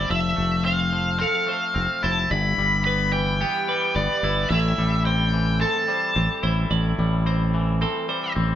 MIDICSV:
0, 0, Header, 1, 5, 480
1, 0, Start_track
1, 0, Key_signature, 0, "minor"
1, 0, Tempo, 550459
1, 88, Time_signature, 4, 2, 24, 8
1, 7456, End_track
2, 0, Start_track
2, 0, Title_t, "Lead electric guitar"
2, 0, Program_c, 0, 29
2, 0, Note_on_c, 0, 74, 70
2, 91, Note_off_c, 0, 74, 0
2, 95, Note_on_c, 0, 76, 91
2, 562, Note_off_c, 0, 76, 0
2, 565, Note_on_c, 0, 77, 88
2, 1013, Note_off_c, 0, 77, 0
2, 1044, Note_on_c, 0, 77, 89
2, 1770, Note_on_c, 0, 81, 81
2, 1788, Note_off_c, 0, 77, 0
2, 2015, Note_on_c, 0, 83, 99
2, 2017, Note_off_c, 0, 81, 0
2, 2469, Note_off_c, 0, 83, 0
2, 2479, Note_on_c, 0, 83, 93
2, 2707, Note_off_c, 0, 83, 0
2, 2724, Note_on_c, 0, 79, 68
2, 3449, Note_on_c, 0, 74, 74
2, 3469, Note_off_c, 0, 79, 0
2, 3919, Note_off_c, 0, 74, 0
2, 3922, Note_on_c, 0, 76, 97
2, 4372, Note_off_c, 0, 76, 0
2, 4406, Note_on_c, 0, 79, 89
2, 4889, Note_off_c, 0, 79, 0
2, 4893, Note_on_c, 0, 81, 83
2, 7257, Note_off_c, 0, 81, 0
2, 7456, End_track
3, 0, Start_track
3, 0, Title_t, "Clean electric guitar"
3, 0, Program_c, 1, 27
3, 0, Note_on_c, 1, 69, 78
3, 0, Note_on_c, 1, 72, 67
3, 90, Note_off_c, 1, 72, 0
3, 96, Note_on_c, 1, 74, 79
3, 257, Note_off_c, 1, 69, 0
3, 572, Note_off_c, 1, 74, 0
3, 577, Note_on_c, 1, 72, 67
3, 1053, Note_off_c, 1, 72, 0
3, 1060, Note_on_c, 1, 69, 72
3, 1294, Note_off_c, 1, 69, 0
3, 1299, Note_on_c, 1, 72, 73
3, 1770, Note_off_c, 1, 72, 0
3, 1780, Note_on_c, 1, 72, 74
3, 2013, Note_off_c, 1, 72, 0
3, 2017, Note_on_c, 1, 74, 81
3, 2493, Note_off_c, 1, 74, 0
3, 2500, Note_on_c, 1, 71, 81
3, 2974, Note_off_c, 1, 71, 0
3, 2977, Note_on_c, 1, 67, 76
3, 3216, Note_on_c, 1, 71, 77
3, 3689, Note_off_c, 1, 71, 0
3, 3699, Note_on_c, 1, 71, 65
3, 3934, Note_off_c, 1, 71, 0
3, 3940, Note_on_c, 1, 74, 85
3, 4414, Note_off_c, 1, 74, 0
3, 4418, Note_on_c, 1, 72, 80
3, 4898, Note_on_c, 1, 69, 77
3, 4924, Note_off_c, 1, 67, 0
3, 5137, Note_off_c, 1, 72, 0
3, 5137, Note_on_c, 1, 72, 71
3, 5611, Note_off_c, 1, 72, 0
3, 5611, Note_on_c, 1, 72, 69
3, 5846, Note_off_c, 1, 72, 0
3, 5850, Note_on_c, 1, 74, 86
3, 6330, Note_off_c, 1, 74, 0
3, 6337, Note_on_c, 1, 72, 81
3, 6813, Note_off_c, 1, 72, 0
3, 6818, Note_off_c, 1, 69, 0
3, 6818, Note_on_c, 1, 69, 76
3, 7051, Note_off_c, 1, 69, 0
3, 7055, Note_on_c, 1, 72, 73
3, 7456, Note_off_c, 1, 72, 0
3, 7456, End_track
4, 0, Start_track
4, 0, Title_t, "Clean electric guitar"
4, 0, Program_c, 2, 27
4, 0, Note_on_c, 2, 55, 53
4, 0, Note_on_c, 2, 64, 69
4, 83, Note_on_c, 2, 53, 65
4, 90, Note_off_c, 2, 55, 0
4, 109, Note_off_c, 2, 64, 0
4, 318, Note_on_c, 2, 57, 52
4, 562, Note_on_c, 2, 60, 70
4, 794, Note_off_c, 2, 53, 0
4, 805, Note_on_c, 2, 53, 63
4, 1027, Note_off_c, 2, 60, 0
4, 1037, Note_on_c, 2, 60, 68
4, 1267, Note_off_c, 2, 57, 0
4, 1277, Note_on_c, 2, 57, 56
4, 1509, Note_off_c, 2, 60, 0
4, 1519, Note_on_c, 2, 60, 69
4, 1766, Note_on_c, 2, 64, 79
4, 2004, Note_off_c, 2, 57, 0
4, 2004, Note_off_c, 2, 60, 0
4, 2006, Note_on_c, 2, 43, 68
4, 2007, Note_off_c, 2, 53, 0
4, 2251, Note_on_c, 2, 55, 62
4, 2490, Note_on_c, 2, 59, 74
4, 2727, Note_on_c, 2, 52, 67
4, 2959, Note_off_c, 2, 59, 0
4, 2970, Note_on_c, 2, 59, 77
4, 3208, Note_off_c, 2, 43, 0
4, 3209, Note_off_c, 2, 55, 0
4, 3213, Note_on_c, 2, 55, 66
4, 3443, Note_off_c, 2, 59, 0
4, 3453, Note_on_c, 2, 59, 72
4, 3690, Note_off_c, 2, 64, 0
4, 3694, Note_on_c, 2, 64, 78
4, 3931, Note_off_c, 2, 59, 0
4, 3933, Note_on_c, 2, 45, 68
4, 3959, Note_off_c, 2, 55, 0
4, 4173, Note_on_c, 2, 55, 73
4, 4411, Note_on_c, 2, 60, 62
4, 4647, Note_off_c, 2, 52, 0
4, 4651, Note_on_c, 2, 52, 67
4, 4882, Note_off_c, 2, 60, 0
4, 4886, Note_on_c, 2, 60, 69
4, 5116, Note_off_c, 2, 55, 0
4, 5126, Note_on_c, 2, 55, 64
4, 5131, Note_off_c, 2, 45, 0
4, 5357, Note_off_c, 2, 60, 0
4, 5367, Note_on_c, 2, 60, 71
4, 5603, Note_off_c, 2, 64, 0
4, 5606, Note_on_c, 2, 64, 75
4, 5852, Note_on_c, 2, 45, 65
4, 6086, Note_off_c, 2, 55, 0
4, 6096, Note_on_c, 2, 55, 60
4, 6322, Note_off_c, 2, 60, 0
4, 6332, Note_on_c, 2, 60, 66
4, 6573, Note_off_c, 2, 52, 0
4, 6576, Note_on_c, 2, 52, 76
4, 6802, Note_off_c, 2, 60, 0
4, 6808, Note_off_c, 2, 64, 0
4, 6812, Note_on_c, 2, 60, 82
4, 7039, Note_off_c, 2, 55, 0
4, 7049, Note_on_c, 2, 55, 62
4, 7051, Note_off_c, 2, 45, 0
4, 7276, Note_off_c, 2, 60, 0
4, 7286, Note_on_c, 2, 60, 83
4, 7456, Note_off_c, 2, 52, 0
4, 7456, Note_off_c, 2, 55, 0
4, 7456, Note_off_c, 2, 60, 0
4, 7456, End_track
5, 0, Start_track
5, 0, Title_t, "Fingered electric bass"
5, 0, Program_c, 3, 33
5, 89, Note_on_c, 3, 29, 93
5, 274, Note_off_c, 3, 29, 0
5, 333, Note_on_c, 3, 29, 89
5, 1070, Note_off_c, 3, 29, 0
5, 1532, Note_on_c, 3, 29, 93
5, 1623, Note_off_c, 3, 29, 0
5, 1777, Note_on_c, 3, 29, 80
5, 1959, Note_off_c, 3, 29, 0
5, 2013, Note_on_c, 3, 31, 110
5, 2197, Note_off_c, 3, 31, 0
5, 2250, Note_on_c, 3, 31, 86
5, 2989, Note_off_c, 3, 31, 0
5, 3450, Note_on_c, 3, 31, 103
5, 3542, Note_off_c, 3, 31, 0
5, 3688, Note_on_c, 3, 31, 78
5, 3874, Note_off_c, 3, 31, 0
5, 3927, Note_on_c, 3, 33, 116
5, 4113, Note_off_c, 3, 33, 0
5, 4170, Note_on_c, 3, 33, 88
5, 4909, Note_off_c, 3, 33, 0
5, 5372, Note_on_c, 3, 33, 95
5, 5464, Note_off_c, 3, 33, 0
5, 5610, Note_on_c, 3, 33, 76
5, 5795, Note_off_c, 3, 33, 0
5, 5848, Note_on_c, 3, 33, 94
5, 6033, Note_off_c, 3, 33, 0
5, 6091, Note_on_c, 3, 33, 91
5, 6830, Note_off_c, 3, 33, 0
5, 7293, Note_on_c, 3, 33, 75
5, 7456, Note_off_c, 3, 33, 0
5, 7456, End_track
0, 0, End_of_file